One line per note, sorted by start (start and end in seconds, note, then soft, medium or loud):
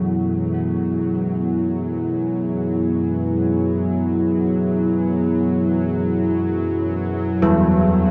0.00 8.11 F#2 medium
0.00 8.11 F#3 medium
0.00 8.11 B3 medium
0.00 8.11 E4 medium
0.00 1.95 F#4 medium
0.00 8.11 G#4 medium
7.42 8.11 E3 medium